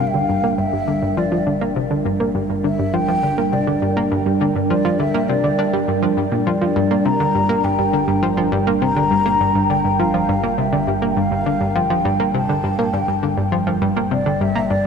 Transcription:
Already playing: synth drone G1, analog synth pad G3 D4 A#4 G5
0.06 flute E5
0.13 synth arpeggio sound D3, flute F5
0.29 synth arpeggio sound G2
0.44 synth arpeggio sound A#3
0.58 synth arpeggio sound G2, flute E5
0.73 synth arpeggio sound G2
0.88 synth arpeggio sound D3
1.02 synth arpeggio sound G2
1.17 synth arpeggio sound F3, flute D5
1.32 synth arpeggio sound F3
1.47 synth arpeggio sound D3
1.61 synth arpeggio sound A#3
1.76 synth arpeggio sound C3
1.91 synth arpeggio sound D3
2.05 synth arpeggio sound G2
2.20 synth arpeggio sound A#3
2.35 synth arpeggio sound G2
2.50 synth arpeggio sound G2
2.64 synth arpeggio sound D3, flute E5
2.79 synth arpeggio sound G2
2.94 synth arpeggio sound F3, flute G5
3.08 synth arpeggio sound F3
3.23 synth arpeggio sound D3
3.38 synth arpeggio sound A#3
3.52 synth arpeggio sound C3, flute D5
3.67 synth arpeggio sound D3
3.82 synth arpeggio sound G2
3.97 synth arpeggio sound A#3
4.12 synth arpeggio sound G2
4.26 synth arpeggio sound G2
4.41 synth arpeggio sound D3
4.55 synth arpeggio sound G2
4.70 synth arpeggio sound F3, flute D5
4.85 synth arpeggio sound F3
4.99 synth arpeggio sound D3, flute E5
5.14 synth arpeggio sound A#3
5.28 synth arpeggio sound C3, flute D5
5.44 synth arpeggio sound D3
5.59 synth arpeggio sound D4
5.73 synth arpeggio sound G3
5.88 synth arpeggio sound G2
6.03 synth arpeggio sound F3
6.17 synth arpeggio sound G2
6.32 synth arpeggio sound A#2
6.46 synth drone G1, synth arpeggio sound F3, flute D5
6.61 synth arpeggio sound F3
6.76 synth arpeggio sound G2
6.91 synth arpeggio sound A#3
7.05 synth arpeggio sound C3, flute A#5
7.20 synth arpeggio sound D3
7.35 synth arpeggio sound G2
7.49 synth arpeggio sound A#3
7.64 synth arpeggio sound G2, flute G5
7.79 synth arpeggio sound G2
7.93 synth arpeggio sound D3
8.08 synth arpeggio sound G2
8.23 synth arpeggio sound F3
8.37 synth arpeggio sound F3
8.52 synth arpeggio sound G2
8.67 synth arpeggio sound A#3
8.82 synth arpeggio sound C3, flute A#5
8.97 synth arpeggio sound D3
9.11 synth arpeggio sound G2
9.26 synth arpeggio sound A#3
9.41 synth arpeggio sound G2
9.55 synth arpeggio sound G2
9.70 synth arpeggio sound D3, flute G5
9.85 synth arpeggio sound G2
9.99 synth arpeggio sound F3, flute F5
10.14 synth arpeggio sound F3
10.29 synth arpeggio sound G2
10.43 synth arpeggio sound A#3
10.58 synth arpeggio sound C3, flute E5
10.73 synth arpeggio sound D3
10.87 synth arpeggio sound G2
11.02 synth arpeggio sound A#3
11.10 flute G5
11.16 synth arpeggio sound G2, flute F5
11.31 synth arpeggio sound G2
11.46 synth arpeggio sound D3
11.61 synth arpeggio sound G2
11.76 synth arpeggio sound F3, flute G5
11.90 synth arpeggio sound F3
12.05 synth arpeggio sound G2
12.20 synth arpeggio sound A#3
12.34 synth arpeggio sound C3, flute A5
12.49 synth arpeggio sound D3
12.64 synth arpeggio sound G2
12.79 synth arpeggio sound A#3
12.93 synth arpeggio sound G2, flute G5
13.08 synth arpeggio sound G2
13.23 synth arpeggio sound D3
13.37 synth arpeggio sound G2
13.52 synth arpeggio sound F3
13.67 synth arpeggio sound F3
13.82 synth arpeggio sound G2
13.97 synth arpeggio sound A#3
14.11 synth arpeggio sound C3, flute D5
14.26 synth arpeggio sound D3
14.41 synth arpeggio sound G2, flute E5
14.55 synth arpeggio sound A#3
14.70 synth arpeggio sound G2, flute D5

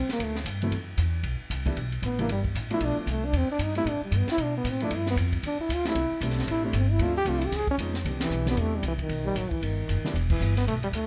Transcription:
0.08 muted upright bass stroke, snare, ride
0.13 trombone A#3
0.19 upright bass D2, kick, ride
0.24 trombone A3
0.36 snare
0.45 upright bass G2, kick, hi-hat pedal, ride
0.62 grand piano E3 F#3 A3 C4 E4, ride
0.71 upright bass F#2, kick, ride
0.97 upright bass E2, kick, hi-hat pedal, ride
1.23 upright bass B1, kick, ride
1.40 muted upright bass stroke
1.50 upright bass C2, kick, hi-hat pedal, ride
1.66 grand piano E3 G3 B3 D4 E4, kick, ride
1.76 upright bass B1, kick, ride
1.92 ride
2.02 upright bass A1, trombone B3, kick, hi-hat pedal, ride
2.19 grand piano E3 G3 B3 D4 E4, trombone A#3, ride
2.28 upright bass G1, trombone G3, kick, ride
2.44 kick
2.55 upright bass A1, kick, hi-hat pedal, ride
2.70 grand piano F3 A3 B3 D4 E4, trombone E4, ride
2.80 upright bass B1, kick, ride
2.85 trombone D4
2.97 trombone F3, muted upright bass stroke
3.06 upright bass C2, kick, hi-hat pedal, ride
3.11 trombone A3
3.25 trombone D4
3.33 upright bass E2, kick, ride
3.37 trombone C4
3.49 trombone D4, muted upright bass stroke
3.59 upright bass G2, kick, hi-hat pedal, ride
3.63 trombone D#4
3.75 grand piano G3 A3 B3 C4 E4, trombone E4, ride
3.85 upright bass A2, kick, ride
3.89 trombone D4
4.01 trombone G3, muted upright bass stroke
4.11 upright bass G2, kick, hi-hat pedal, ride
4.17 trombone B3
4.28 trombone E4, muted upright bass stroke, snare, ride
4.37 upright bass B2, kick, ride
4.43 trombone D4
4.57 trombone B3
4.64 upright bass A2, kick, hi-hat pedal, ride
4.70 trombone C4
4.80 grand piano F3 A3 B3 D4 E4, trombone D4, ride
4.91 upright bass G2, kick, ride
4.96 trombone E4
5.06 trombone B3, snare
5.16 upright bass F2, kick, hi-hat pedal, ride
5.33 kick, ride
5.43 upright bass E2, kick, ride
5.47 trombone D4
5.59 trombone E4, muted upright bass stroke
5.69 upright bass D2, kick, hi-hat pedal, ride
5.74 trombone F4
5.85 grand piano G3 A3 C4 D4 E4, trombone E4, snare, ride
5.95 upright bass C2, kick, ride
6.11 muted upright bass stroke
6.21 upright bass B1, grand piano G3 A3 C4 D4 E4, kick, hi-hat pedal, ride
6.30 snare
6.39 snare
6.47 upright bass A1, kick, ride
6.51 trombone E4
6.64 grand piano G3 A3 C4 D4 E4, trombone G3
6.73 upright bass G1, kick, hi-hat pedal, ride
6.78 trombone C4
6.91 trombone E4
6.99 upright bass D2, grand piano F3 A3 C4 D4 E4, kick, ride
7.03 trombone F4
7.17 trombone G4
7.25 upright bass C2, grand piano F3 A3 C4 D4 F4, kick, hi-hat pedal, ride
7.30 trombone F4
7.38 trombone E4, ride
7.46 trombone G4
7.51 upright bass C#2, kick, snare, ride
7.56 trombone G#4
7.67 trombone C#4, muted upright bass stroke, kick
7.78 upright bass F2, grand piano F3 G#3 B3 C#4 D#4, kick, hi-hat pedal, ride
7.94 snare
8.04 upright bass C2, grand piano E3 B3 C4 D4 G4, kick, ride
8.21 trombone E3, snare, ride
8.30 upright bass B1, hi-hat pedal
8.46 grand piano E3 B3 C4 D4 G4, trombone B3, snare, ride
8.56 upright bass E2, kick, ride
8.60 trombone A3
8.77 trombone G3
8.83 upright bass C2, kick, hi-hat pedal, ride
8.88 trombone E3
8.99 kick, ride
9.03 trombone D#3
9.09 upright bass B1, kick, ride
9.25 trombone G3
9.35 upright bass A1, trombone F#3, kick, hi-hat pedal, ride
9.51 trombone E3, muted upright bass stroke, kick
9.61 upright bass G1, trombone D#3, kick, ride
9.88 upright bass F#1, kick, hi-hat pedal, ride
10.02 grand piano E3 G3 B3 D4 E4, muted upright bass stroke, snare
10.14 upright bass E1, kick, ride
10.30 trombone E3, kick, crash
10.40 upright bass G1, hi-hat pedal
10.57 trombone B3, snare, ride
10.67 upright bass B1, trombone A3, kick, ride
10.76 upright bass G1
10.83 upright bass E1, trombone G3, ride
10.92 upright bass D2, trombone A3, kick, hi-hat pedal, ride

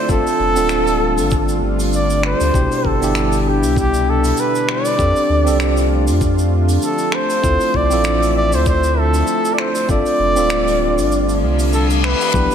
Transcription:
Already playing: analog synth pad D3 A3, tine electric piano C4 E4 F4 A4
0.08 sub bass G1, analog synth pad G3 D4 F4, tine electric piano C4 D4 F4 A4, muted trumpet A4, kick, shaker
0.27 open hi-hat, shaker
0.39 sub bass F1
0.55 sub bass D1, tine electric piano C4 D4 F4 A4, open hi-hat, shaker
0.69 finger snap, shaker
0.87 open hi-hat, shaker
1.18 sub bass G1, open hi-hat, shaker
1.31 kick, shaker
1.49 shaker
1.61 sub bass G1
1.80 open hi-hat, shaker
1.93 muted trumpet D5, shaker
2.10 open hi-hat, shaker
2.23 muted trumpet C5, finger snap
2.40 sub bass D2, open hi-hat, shaker
2.53 sub bass C2, tine electric piano B2 D4 E4 G4, analog synth pad B2 E4, kick, shaker
2.72 open hi-hat, shaker
2.85 sub bass G1, muted trumpet A4, kick
3.00 sub bass G1, tine electric piano B3 D4 E4 G4, open hi-hat, shaker
3.15 finger snap, shaker
3.32 open hi-hat, shaker
3.41 muted trumpet A4
3.48 muted trumpet G4
3.63 sub bass C2, open hi-hat, shaker
3.76 muted trumpet G4, kick, shaker
3.94 shaker
4.10 muted trumpet A4
4.24 open hi-hat, shaker
4.37 muted trumpet B4, shaker
4.55 shaker
4.69 muted trumpet D5, finger snap
4.85 open hi-hat, shaker
4.98 sub bass F2, analog synth pad F3 A3 F4, tine electric piano C4 D4 G4 A4, kick, shaker
5.16 open hi-hat, shaker
5.29 sub bass D2
5.45 sub bass C2, tine electric piano C4 D4 G4 A4, open hi-hat, shaker
5.60 finger snap, shaker
5.77 open hi-hat, shaker
6.07 sub bass F2, open hi-hat, shaker
6.21 kick, shaker
6.38 shaker
6.68 open hi-hat, shaker
6.82 muted trumpet A4, shaker
6.98 open hi-hat, shaker
7.12 muted trumpet C5, finger snap
7.30 open hi-hat, shaker
7.42 sub bass D2, tine electric piano C4 E4 F4 A4, analog synth pad E5, kick, shaker
7.60 open hi-hat, shaker
7.74 sub bass C2, muted trumpet D5, kick
7.90 sub bass A1, tine electric piano C4 E4 F4 A4, open hi-hat, shaker
8.04 finger snap, shaker
8.22 open hi-hat, shaker
8.37 muted trumpet D5
8.52 sub bass D2, muted trumpet C5, open hi-hat, shaker
8.66 muted trumpet C5, kick, shaker
8.83 shaker
8.99 muted trumpet A4
9.14 open hi-hat, shaker
9.27 shaker
9.45 shaker
9.54 muted trumpet D5
9.58 muted trumpet C5, finger snap
9.75 open hi-hat, shaker
9.88 sub bass G1, analog synth pad D3 G3 D4 F4, tine electric piano C4 D4 F4 A4, muted trumpet D5, kick, shaker
10.06 open hi-hat, shaker
10.19 sub bass F1
10.36 sub bass D1, tine electric piano C4 D4 F4 A4, open hi-hat, shaker
10.50 finger snap, shaker
10.67 open hi-hat, shaker
10.97 sub bass G1, open hi-hat, shaker
11.11 reverse cymbal, shaker
11.29 open hi-hat, shaker
11.42 sub bass C2
11.59 open hi-hat, shaker
11.73 muted trumpet A4, shaker
11.90 open hi-hat, shaker
12.04 muted trumpet B4, finger snap
12.21 open hi-hat, shaker
12.33 sub bass C2, analog synth pad B2 D4 E4, tine electric piano B3 D4 E4 G4, kick, high conga, shaker
12.51 open hi-hat, shaker

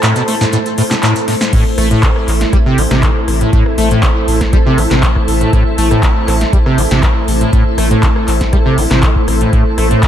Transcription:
Already playing: string machine A3 A4 C5 A5, ambient pad E4 C5 A5
0.03 acid bass A2, clap, closed hi-hat, shekere
0.16 acid bass B2, closed hi-hat, shekere
0.28 acid bass A3, open hi-hat
0.41 acid bass A2, snare, shekere
0.53 acid bass A2, closed hi-hat, shekere
0.66 closed hi-hat, shekere
0.78 acid bass A2, open hi-hat
0.91 acid bass C3, snare, clap, closed hi-hat, shekere
1.03 acid bass A2, clap, closed hi-hat, shekere
1.16 closed hi-hat, shekere
1.28 acid bass A2, snare, open hi-hat
1.41 snare, shekere
1.53 acid bass A2, string machine A3 A4 C5 E5, ambient pad E4, kick, closed hi-hat, crash
1.78 sub bass A1, acid bass A3, cross-stick, open hi-hat
1.91 acid bass A2, ambient pad C5, closed hi-hat
2.03 acid bass E3, kick, clap, closed hi-hat
2.16 cross-stick
2.23 ambient pad A5
2.28 sub bass A1, clap, open hi-hat
2.41 snare, closed hi-hat
2.53 acid bass G3, kick, cross-stick, closed hi-hat
2.66 acid bass C3
2.78 sub bass A1, acid bass E3, open hi-hat
2.91 sub bass A1, acid bass C3, cross-stick, snare, closed hi-hat
3.03 acid bass E3, kick, clap, closed hi-hat
3.28 sub bass A1, cross-stick, open hi-hat
3.41 acid bass A2, closed hi-hat
3.53 acid bass A2, kick, closed hi-hat
3.66 cross-stick
3.78 sub bass A1, acid bass A3, open hi-hat
3.91 acid bass A2, closed hi-hat
4.03 acid bass E3, kick, cross-stick, clap, closed hi-hat
4.28 sub bass A1, open hi-hat
4.41 kick, cross-stick, snare, closed hi-hat
4.53 acid bass G3, kick, closed hi-hat
4.66 acid bass C3
4.78 sub bass A1, acid bass E3, cross-stick, open hi-hat
4.91 sub bass A1, acid bass C3, snare, clap
5.03 acid bass E3, kick, clap, closed hi-hat
5.16 kick, cross-stick
5.28 sub bass A1, open hi-hat
5.41 acid bass A2, closed hi-hat
5.53 acid bass A2, kick, cross-stick, closed hi-hat
5.78 sub bass A1, acid bass A3, open hi-hat
5.91 acid bass A2, cross-stick, closed hi-hat
6.03 acid bass E3, kick, clap, closed hi-hat
6.28 sub bass A1, cross-stick, clap, open hi-hat
6.41 snare, closed hi-hat
6.53 acid bass G3, kick, closed hi-hat
6.66 acid bass C3, cross-stick
6.78 sub bass A1, acid bass E3, open hi-hat
6.91 sub bass A1, acid bass C3, snare, closed hi-hat
7.03 acid bass E3, kick, cross-stick, clap, closed hi-hat
7.28 sub bass A1, open hi-hat
7.41 acid bass A2, closed hi-hat
7.53 acid bass A2, kick, closed hi-hat
7.78 sub bass A1, acid bass A3, cross-stick, open hi-hat
7.91 acid bass A2, closed hi-hat
8.03 acid bass E3, kick, clap, closed hi-hat
8.16 cross-stick
8.28 sub bass A1, clap, open hi-hat
8.41 kick, snare, closed hi-hat
8.53 acid bass G3, kick, cross-stick, closed hi-hat
8.66 acid bass C3
8.78 sub bass A1, acid bass E3, open hi-hat
8.91 sub bass A1, acid bass C3, cross-stick, snare, clap
9.03 acid bass E3, kick, clap, closed hi-hat
9.16 kick
9.28 sub bass A1, cross-stick, open hi-hat
9.41 acid bass A2, closed hi-hat
9.53 acid bass A2, string machine A5, kick, closed hi-hat
9.78 sub bass A1, acid bass A3, cross-stick, open hi-hat
9.91 acid bass A2, closed hi-hat
10.03 acid bass E3, kick, clap, closed hi-hat

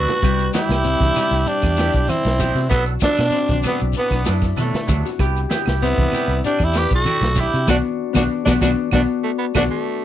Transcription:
Already playing: clean electric guitar F#3 B3 D4 A4, harp C4 D4 E4, tenor saxophone F#4, alto saxophone B4
0.08 harp F#4, snare, closed hi-hat, low conga, shekere
0.22 fingered electric bass C2, harp G3, clean electric guitar B3 E4 G4, kick, snare, closed hi-hat, high conga, claves, shekere
0.38 closed hi-hat, shekere
0.53 clean electric guitar B3 E4 G4, harp E4, tenor saxophone E4, alto saxophone G4, snare, closed hi-hat, high conga, shekere
0.69 fingered electric bass C2, clean electric guitar E4 G4, snare, claves, shekere
0.84 harp C4, snare, closed hi-hat, high conga, shekere
1.00 fingered electric bass C2, harp D4, kick, closed hi-hat, high conga, shekere
1.15 clean electric guitar B3 E4 G4, open hi-hat, low conga, claves, shekere
1.31 fingered electric bass C2, harp E4, snare, closed hi-hat, shekere
1.46 harp D4, tenor saxophone D4, alto saxophone G4, closed hi-hat, high conga, shekere
1.61 fingered electric bass E2, harp D4, kick, snare, claves, shekere
1.77 clean electric guitar B3 E4 G4, harp E4, snare, closed hi-hat, shekere
1.93 fingered electric bass B1, kick, closed hi-hat, shekere
2.08 tenor saxophone C4, alto saxophone E4, closed hi-hat, high conga, claves, shekere
2.24 fingered electric bass B1, snare, shekere
2.39 clean electric guitar B3 E4 G4, kick, closed hi-hat, high conga, low conga, shekere
2.55 fingered electric bass C3, harp F#4, snare, closed hi-hat, shekere
2.69 fingered electric bass B1, clean electric guitar F#3 B3 D4 A4, tenor saxophone B3, alto saxophone B3, harp F#4, kick, snare, closed hi-hat, claves, shekere
2.86 closed hi-hat, shekere
3.00 clean electric guitar F#3 B3 D4 A4, harp D4, tenor saxophone D4, alto saxophone D4, kick, snare, closed hi-hat, high conga, shekere
3.16 fingered electric bass B2, clean electric guitar B3 D4 A4, snare, closed hi-hat, claves, shekere
3.30 harp C4, snare, closed hi-hat, high conga, shekere
3.48 fingered electric bass B1, harp D4, kick, closed hi-hat, high conga, shekere
3.63 clean electric guitar F#3 B3 D4, alto saxophone B3, snare, open hi-hat, low conga, claves, shekere
3.67 tenor saxophone B3
3.79 fingered electric bass B1, harp E4, closed hi-hat, shekere
3.93 alto saxophone B3, harp D4, closed hi-hat, high conga, shekere
3.99 tenor saxophone B3
4.10 fingered electric bass B1, harp D4, kick, snare, closed hi-hat, claves, shekere
4.25 fingered electric bass F#2, clean electric guitar F#3 B3 D4 A4, harp E4, snare, closed hi-hat, shekere
4.41 kick, snare, shekere
4.56 fingered electric bass B2, clean electric guitar F#3 B3 D4 A4, alto saxophone A3, snare, closed hi-hat, high conga, claves, shekere
4.61 tenor saxophone A3
4.74 snare, closed hi-hat, low conga, shekere
4.87 fingered electric bass D2, clean electric guitar F#3 B3 D4 A4, kick, closed hi-hat, high conga, low conga, shekere
5.05 harp F#4, snare, closed hi-hat, shekere
5.19 fingered electric bass C2, clean electric guitar B3 E4 G4, harp G4, kick, closed hi-hat, high conga, claves, shekere
5.35 closed hi-hat, shekere
5.49 clean electric guitar B3 E4 G4, harp E4, snare, closed hi-hat, high conga, shekere
5.66 fingered electric bass C2, clean electric guitar E4 G4, snare, claves, shekere
5.82 tenor saxophone B3, harp C4, alto saxophone E4, snare, closed hi-hat, high conga, shekere
5.98 fingered electric bass C2, harp D4, kick, closed hi-hat, high conga, shekere
6.12 clean electric guitar E4 G4, muted fingered electric bass stroke, snare, open hi-hat, low conga, claves, shekere
6.28 fingered electric bass C2, harp E4, closed hi-hat, shekere
6.44 harp D4, tenor saxophone D4, alto saxophone G4, closed hi-hat, high conga, shekere
6.59 fingered electric bass E2, kick, claves, shekere
6.64 tenor saxophone E4, alto saxophone G4
6.73 clean electric guitar B3 E4 G4, harp E4, snare, closed hi-hat, shekere
6.78 tenor saxophone G4, alto saxophone B4
6.90 fingered electric bass B1, alto saxophone A4, kick, closed hi-hat, shekere
6.95 tenor saxophone F#4
7.05 clean electric guitar B3 E4 G4, closed hi-hat, high conga, claves, shekere
7.21 fingered electric bass B1, snare, low conga, shekere
7.35 clean electric guitar B3 E4 G4, kick, closed hi-hat, high conga, low conga, shekere
7.40 tenor saxophone E4, alto saxophone G4
7.52 fingered electric bass C3, harp F#4, closed hi-hat, shekere
7.67 fingered electric bass B1, harp B3 D4 F#4, clean electric guitar B3 D4 F#4, tenor saxophone D4, alto saxophone F#4, kick, snare, high conga, claves, shekere
8.13 fingered electric bass B1, harp B3 D4, clean electric guitar B3 D4 F#4, tenor saxophone D4, alto saxophone F#4, kick, snare, high conga, claves, shekere
8.18 harp F#4
8.45 fingered electric bass B1, harp B3 D4 F#4, clean electric guitar B3 D4 F#4, tenor saxophone D4, alto saxophone F#4, kick, snare, high conga, claves, shekere
8.60 fingered electric bass B1, clean electric guitar B3 D4 F#4, harp B3 D4 F#4, tenor saxophone D4, alto saxophone F#4, kick, snare, high conga, claves, shekere
8.91 fingered electric bass B1, clean electric guitar B3 D4 F#4, harp B3 D4 F#4, tenor saxophone D4, alto saxophone F#4, kick, snare, high conga, claves, shekere
9.24 baritone saxophone A3
9.38 baritone saxophone B3
9.54 fingered electric bass B1, baritone saxophone A3, harp B3 D4 F#4, clean electric guitar B3 D4 F#4, tenor saxophone D4, alto saxophone F#4, kick, snare, high conga, claves, shekere
9.70 baritone saxophone A3

